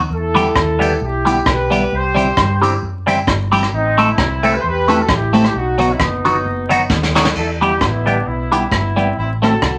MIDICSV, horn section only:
0, 0, Header, 1, 2, 480
1, 0, Start_track
1, 0, Tempo, 453515
1, 106, Time_signature, 4, 2, 24, 8
1, 10355, End_track
2, 0, Start_track
2, 0, Title_t, "Horn section"
2, 0, Program_c, 0, 61
2, 126, Note_on_c, 0, 64, 79
2, 126, Note_on_c, 0, 69, 98
2, 1034, Note_off_c, 0, 64, 0
2, 1034, Note_off_c, 0, 69, 0
2, 1085, Note_on_c, 0, 64, 71
2, 1097, Note_on_c, 0, 67, 91
2, 1551, Note_off_c, 0, 67, 0
2, 1555, Note_off_c, 0, 64, 0
2, 1563, Note_on_c, 0, 67, 82
2, 1583, Note_on_c, 0, 71, 108
2, 2035, Note_off_c, 0, 67, 0
2, 2044, Note_off_c, 0, 71, 0
2, 2061, Note_on_c, 0, 67, 90
2, 2073, Note_on_c, 0, 72, 110
2, 3003, Note_off_c, 0, 67, 0
2, 3009, Note_off_c, 0, 72, 0
2, 3963, Note_on_c, 0, 63, 99
2, 3965, Note_on_c, 0, 60, 80
2, 4304, Note_off_c, 0, 63, 0
2, 4305, Note_off_c, 0, 60, 0
2, 4338, Note_on_c, 0, 64, 98
2, 4339, Note_on_c, 0, 60, 78
2, 4809, Note_off_c, 0, 64, 0
2, 4810, Note_off_c, 0, 60, 0
2, 4811, Note_on_c, 0, 67, 83
2, 4811, Note_on_c, 0, 71, 107
2, 4870, Note_off_c, 0, 67, 0
2, 4870, Note_off_c, 0, 71, 0
2, 4874, Note_on_c, 0, 72, 92
2, 4941, Note_off_c, 0, 72, 0
2, 4958, Note_on_c, 0, 67, 87
2, 4958, Note_on_c, 0, 71, 111
2, 5287, Note_on_c, 0, 66, 72
2, 5291, Note_off_c, 0, 67, 0
2, 5291, Note_off_c, 0, 71, 0
2, 5295, Note_on_c, 0, 69, 96
2, 5388, Note_off_c, 0, 66, 0
2, 5392, Note_off_c, 0, 69, 0
2, 5404, Note_on_c, 0, 64, 76
2, 5410, Note_on_c, 0, 67, 100
2, 5761, Note_off_c, 0, 64, 0
2, 5768, Note_off_c, 0, 67, 0
2, 5774, Note_on_c, 0, 64, 70
2, 5781, Note_on_c, 0, 67, 85
2, 5865, Note_off_c, 0, 64, 0
2, 5868, Note_off_c, 0, 67, 0
2, 5882, Note_on_c, 0, 63, 81
2, 5890, Note_on_c, 0, 66, 104
2, 6248, Note_off_c, 0, 63, 0
2, 6252, Note_off_c, 0, 66, 0
2, 6257, Note_on_c, 0, 60, 64
2, 6265, Note_on_c, 0, 64, 82
2, 6353, Note_off_c, 0, 60, 0
2, 6354, Note_on_c, 0, 59, 66
2, 6357, Note_off_c, 0, 64, 0
2, 6364, Note_on_c, 0, 63, 88
2, 7579, Note_off_c, 0, 59, 0
2, 7584, Note_off_c, 0, 63, 0
2, 7793, Note_on_c, 0, 64, 82
2, 7804, Note_on_c, 0, 69, 100
2, 7913, Note_off_c, 0, 64, 0
2, 7921, Note_off_c, 0, 69, 0
2, 8057, Note_on_c, 0, 64, 81
2, 8062, Note_on_c, 0, 67, 98
2, 8251, Note_off_c, 0, 64, 0
2, 8253, Note_off_c, 0, 67, 0
2, 8285, Note_on_c, 0, 59, 73
2, 8286, Note_on_c, 0, 64, 95
2, 8532, Note_off_c, 0, 59, 0
2, 8542, Note_on_c, 0, 62, 86
2, 8545, Note_on_c, 0, 59, 68
2, 8546, Note_off_c, 0, 64, 0
2, 8742, Note_off_c, 0, 59, 0
2, 8748, Note_off_c, 0, 62, 0
2, 8755, Note_on_c, 0, 59, 72
2, 8761, Note_on_c, 0, 64, 93
2, 9226, Note_off_c, 0, 64, 0
2, 9230, Note_off_c, 0, 59, 0
2, 9239, Note_on_c, 0, 64, 93
2, 9245, Note_on_c, 0, 59, 66
2, 9484, Note_off_c, 0, 64, 0
2, 9487, Note_off_c, 0, 59, 0
2, 9510, Note_on_c, 0, 64, 86
2, 9519, Note_on_c, 0, 60, 67
2, 9698, Note_off_c, 0, 64, 0
2, 9703, Note_off_c, 0, 60, 0
2, 9719, Note_on_c, 0, 64, 89
2, 9726, Note_on_c, 0, 60, 70
2, 9838, Note_off_c, 0, 64, 0
2, 9843, Note_off_c, 0, 60, 0
2, 9984, Note_on_c, 0, 69, 95
2, 9989, Note_on_c, 0, 66, 74
2, 10355, Note_off_c, 0, 66, 0
2, 10355, Note_off_c, 0, 69, 0
2, 10355, End_track
0, 0, End_of_file